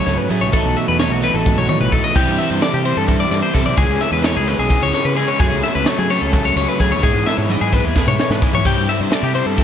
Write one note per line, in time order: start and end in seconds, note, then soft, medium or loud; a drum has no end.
0.00 0.51 F#2 medium
0.00 0.29 C#3 medium
0.00 0.29 F#3 medium
0.00 0.50 F#3 medium
0.00 0.31 A3 medium
0.00 0.30 C#4 loud
0.00 0.51 F#4 medium
0.06 0.16 C#2 medium
0.06 0.29 G#2 medium
0.06 0.18 C#5 medium
0.06 snare soft
0.06 closed hi-hat medium
0.18 0.30 B4 medium
0.30 0.53 A2 medium
0.30 0.52 C#3 medium
0.30 0.43 F#3 medium
0.30 0.52 F#3 medium
0.30 0.54 A3 medium
0.30 0.53 C#4 medium
0.30 0.41 G#4 medium
0.30 closed hi-hat medium
0.41 0.51 C#2 medium
0.41 0.53 C#5 medium
0.53 0.62 B1 medium
0.53 0.98 B2 loud
0.53 1.23 B2 medium
0.53 1.21 E3 medium
0.53 0.99 F#3 loud
0.53 0.99 A3 loud
0.53 2.14 A3 medium
0.53 2.17 B3 medium
0.53 1.00 D#4 loud
0.53 0.76 A4 loud
0.53 kick loud
0.53 closed hi-hat loud
0.57 0.78 E4 medium
0.65 0.74 B1 medium
0.76 0.88 E5 medium
0.76 closed hi-hat medium
0.88 1.12 E2 medium
0.88 0.99 B4 medium
0.99 1.44 B2 medium
0.99 1.23 F#3 medium
0.99 1.22 A3 medium
0.99 1.21 D#4 medium
0.99 1.11 C#5 medium
0.99 snare loud
0.99 closed hi-hat medium
1.12 1.30 B1 medium
1.12 1.23 F#4 medium
1.22 3.77 E3 medium
1.22 1.45 F#3 medium
1.22 1.45 A3 medium
1.22 1.46 D#4 medium
1.22 1.35 B4 medium
1.22 snare soft
1.22 closed hi-hat medium
1.34 1.53 A1 medium
1.34 1.58 A4 medium
1.45 1.69 G#2 medium
1.45 1.90 B2 medium
1.45 1.91 F#3 medium
1.45 1.91 A3 loud
1.45 1.92 D#4 loud
1.45 kick loud
1.45 high tom medium
1.58 1.67 B1 medium
1.58 1.68 C#5 medium
1.69 1.92 A2 medium
1.69 1.80 C#5 medium
1.69 mid tom medium
1.80 1.99 A1 medium
1.80 1.92 B4 medium
1.80 mid tom medium
1.91 2.14 B2 medium
1.91 2.15 B2 medium
1.91 2.14 F#3 medium
1.91 2.14 A3 medium
1.91 2.15 D#4 medium
1.91 2.04 A4 medium
1.91 kick loud
2.04 2.16 D#5 medium
2.14 2.25 C2 medium
2.14 2.60 C3 loud
2.14 2.60 G3 loud
2.14 2.61 C4 loud
2.14 2.62 E4 loud
2.14 2.39 G4 loud
2.14 kick loud
2.14 crash loud
2.28 2.37 G2 medium
2.39 2.50 E5 medium
2.39 ride medium
2.50 2.59 G2 medium
2.50 2.62 C5 medium
2.61 3.05 C3 medium
2.61 2.84 G3 medium
2.61 2.84 C4 medium
2.61 2.83 E4 medium
2.61 2.74 D5 medium
2.61 snare loud
2.61 ride loud
2.73 2.92 C3 medium
2.73 2.85 G4 medium
2.84 3.06 G3 medium
2.84 3.07 C4 medium
2.84 3.08 E4 medium
2.84 2.97 C5 medium
2.84 ride medium
2.97 3.24 G2 medium
2.97 3.20 A4 medium
3.06 3.52 C3 loud
3.06 3.53 G3 medium
3.06 3.53 C4 medium
3.06 3.55 E4 loud
3.06 kick medium
3.06 ride medium
3.20 3.30 D5 medium
3.31 3.40 G2 medium
3.31 3.42 D5 medium
3.31 snare soft
3.31 ride medium
3.43 3.54 C5 medium
3.53 3.76 C3 medium
3.53 3.67 C3 medium
3.53 3.76 G3 medium
3.53 3.76 C4 medium
3.53 3.78 E4 medium
3.53 3.65 A4 medium
3.53 kick medium
3.53 snare soft
3.53 ride medium
3.66 3.75 C2 medium
3.66 3.78 D5 medium
3.77 3.87 C#2 loud
3.77 4.21 C#3 loud
3.77 4.23 E3 loud
3.77 4.23 G#3 loud
3.77 4.24 C#4 loud
3.77 4.01 G#4 loud
3.77 kick loud
3.77 ride loud
3.88 3.98 C#2 medium
4.01 4.12 E5 medium
4.01 snare soft
4.01 ride medium
4.11 4.37 E2 medium
4.11 4.24 B4 medium
4.22 4.68 C#3 medium
4.22 4.48 E3 medium
4.22 4.47 G#3 medium
4.22 4.45 C#4 medium
4.22 4.36 C#5 medium
4.22 snare loud
4.22 ride loud
4.35 4.54 C#2 medium
4.35 4.48 G#4 medium
4.46 4.69 E3 medium
4.46 4.70 G#3 medium
4.46 4.70 C#4 medium
4.46 4.59 B4 medium
4.46 snare soft
4.46 ride medium
4.59 4.77 B1 medium
4.59 4.82 G#4 medium
4.69 5.14 C#3 medium
4.69 5.16 E3 medium
4.69 5.16 G#3 loud
4.69 5.16 C#4 loud
4.69 kick medium
4.69 ride medium
4.82 4.91 C#2 medium
4.82 4.93 C#5 medium
4.93 5.06 C#5 medium
4.93 snare soft
4.93 ride medium
5.05 5.23 C#3 medium
5.05 5.16 B4 medium
5.16 5.38 C#3 medium
5.16 5.40 E3 medium
5.16 5.40 G#3 medium
5.16 5.39 C#4 medium
5.16 5.28 G#4 medium
5.16 ride medium
5.28 5.40 C#5 medium
5.39 6.09 F#2 loud
5.39 5.49 F#2 medium
5.39 5.84 C#3 medium
5.39 5.86 F#3 loud
5.39 5.86 A3 loud
5.39 5.87 C#4 medium
5.39 5.63 G#4 loud
5.39 kick loud
5.39 ride loud
5.51 5.61 C#2 medium
5.63 5.75 E5 medium
5.63 snare soft
5.63 ride medium
5.75 5.84 C#2 loud
5.75 5.86 B4 medium
5.86 6.32 C#3 medium
5.86 6.10 F#3 medium
5.86 6.09 A3 medium
5.86 6.08 C#4 medium
5.86 5.98 C#5 medium
5.86 snare loud
5.86 ride loud
5.98 6.17 F#3 medium
5.98 6.10 G#4 medium
6.09 6.32 F#3 medium
6.09 6.33 A3 medium
6.09 6.33 C#4 medium
6.09 6.22 C#5 medium
6.09 snare soft
6.09 ride medium
6.21 6.49 C#2 medium
6.21 6.45 A4 medium
6.32 7.01 F#2 medium
6.32 6.77 C#3 medium
6.32 6.78 F#3 loud
6.32 6.79 A3 loud
6.32 6.79 C#4 loud
6.32 kick medium
6.32 snare soft
6.32 ride medium
6.45 6.56 C#5 medium
6.56 6.65 C#2 medium
6.56 6.69 C#5 medium
6.56 ride medium
6.69 6.80 B4 medium
6.78 7.01 C#3 medium
6.78 7.01 F#3 medium
6.78 6.92 F#3 medium
6.78 7.01 A3 medium
6.78 7.02 C#4 medium
6.78 6.91 G#4 medium
6.78 kick medium
6.78 ride medium
6.91 7.00 D#2 medium
6.91 7.03 C#5 medium
7.02 7.72 G#2 loud
7.02 7.12 G#2 loud
7.02 7.48 E3 loud
7.02 7.48 G#3 loud
7.02 7.49 B3 loud
7.02 7.50 E4 loud
7.02 7.26 G#4 loud
7.02 kick loud
7.02 ride loud
7.14 7.23 G#2 medium
7.26 7.38 E5 medium
7.26 snare medium
7.38 7.56 G#2 medium
7.38 7.50 C#5 medium
7.49 7.95 E3 medium
7.49 7.73 G#3 medium
7.49 7.72 B3 medium
7.49 7.72 E4 medium
7.49 7.61 D#5 medium
7.49 high tom medium
7.61 7.79 G#2 medium
7.61 7.73 G#4 medium
7.72 7.95 G#3 medium
7.72 7.95 B3 medium
7.72 7.96 E4 medium
7.72 7.85 B4 medium
7.72 kick medium
7.84 8.02 D#2 medium
7.84 8.08 G#4 medium
7.95 8.63 G#2 medium
7.95 8.41 E3 loud
7.95 8.41 G#3 medium
7.95 8.42 B3 loud
7.95 8.43 E4 loud
7.95 kick medium
7.95 snare medium
8.07 8.16 G#2 medium
8.07 8.19 C#5 medium
8.07 mid tom medium
8.20 8.31 C#5 medium
8.20 snare loud
8.30 8.48 G#2 medium
8.30 8.43 B4 medium
8.30 snare loud
8.41 8.64 E3 medium
8.41 8.64 G#3 medium
8.41 8.64 B3 medium
8.41 8.66 E4 medium
8.41 8.54 G#4 medium
8.41 kick loud
8.53 8.66 C#5 medium
8.53 floor tom loud
8.64 8.74 C2 medium
8.64 9.09 C3 medium
8.64 9.10 G3 loud
8.64 9.11 C4 loud
8.64 9.12 E4 loud
8.64 8.89 G4 loud
8.64 kick loud
8.64 crash loud
8.76 8.86 G2 loud
8.89 9.01 E5 medium
8.89 snare soft
8.89 ride medium
9.00 9.09 G2 medium
9.00 9.13 C5 medium
9.11 9.55 C3 medium
9.11 9.34 G3 medium
9.11 9.34 C4 medium
9.11 9.33 E4 medium
9.11 9.24 D5 medium
9.11 snare loud
9.11 ride medium
9.23 9.41 C3 loud
9.23 9.35 G4 medium
9.34 9.56 G3 medium
9.34 9.56 C4 medium
9.34 9.58 E4 medium
9.34 9.46 C5 medium
9.34 ride medium
9.46 9.64 G2 medium
9.46 9.64 A4 medium
9.56 9.64 C3 medium
9.56 9.64 G3 medium
9.56 9.64 C4 medium
9.56 9.64 E4 medium
9.56 kick medium
9.56 ride loud